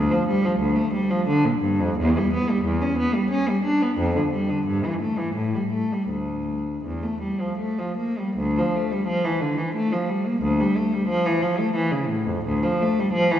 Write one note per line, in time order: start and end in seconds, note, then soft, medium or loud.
0.00 0.10 D2 medium
0.11 0.27 F3 medium
0.28 0.44 G3 medium
0.45 0.61 F3 medium
0.60 0.77 D2 medium
0.76 0.93 A3 medium
0.94 1.10 G3 medium
1.11 1.27 F3 medium
1.28 1.44 D3 medium
1.45 1.62 A#2 medium
1.61 1.79 G2 medium
1.80 1.97 F2 medium
1.98 2.15 E2 medium
2.17 2.33 G3 medium
2.33 2.49 B3 medium
2.50 2.66 G3 medium
2.65 2.82 E2 medium
2.82 2.99 C#4 medium
2.99 3.15 B3 medium
3.14 3.31 G3 medium
3.31 3.48 C#4 medium
3.49 3.65 G3 medium
3.65 3.81 D4 medium
3.82 3.98 B3 medium
3.98 4.14 F2 medium
4.16 4.32 D3 medium
4.33 4.49 G3 soft
4.50 4.66 D3 soft
4.67 4.83 G2 medium
4.84 5.00 E3 medium
5.02 5.18 A3 soft
5.19 5.36 E3 soft
5.35 5.53 A2 soft
5.55 5.73 G3 soft
5.72 5.90 A3 soft
5.92 6.10 G3 soft
6.10 6.83 D2 soft
6.85 7.02 E2 soft
7.03 7.21 A3 soft
7.21 7.39 G3 soft
7.40 7.58 F3 soft
7.58 7.77 A3 soft
7.79 7.98 F3 soft
7.98 8.17 A#3 soft
8.18 8.37 G3 soft
8.37 8.56 D2 medium
8.58 8.75 F3 medium
8.75 8.92 A3 medium
8.92 9.09 G3 medium
9.07 9.24 F3 medium
9.25 9.42 E3 medium
9.41 9.59 D3 medium
9.58 9.75 E3 medium
9.75 9.92 A3 medium
9.92 10.09 F3 medium
10.09 10.26 G3 medium
10.27 10.43 A#3 medium
10.42 10.59 D2 medium
10.60 10.77 G3 medium
10.77 10.93 A3 medium
10.94 11.10 G3 medium
11.09 11.25 F3 medium
11.26 11.42 E3 medium
11.42 11.59 F3 medium
11.59 11.75 A3 medium
11.75 11.92 E3 medium
11.92 12.09 C#3 medium
12.08 12.26 A2 medium
12.26 12.45 F2 medium
12.45 12.63 D2 medium
12.63 12.80 F3 medium
12.81 12.98 A3 medium
12.99 13.15 G3 medium
13.13 13.30 F3 medium
13.32 13.40 E3 medium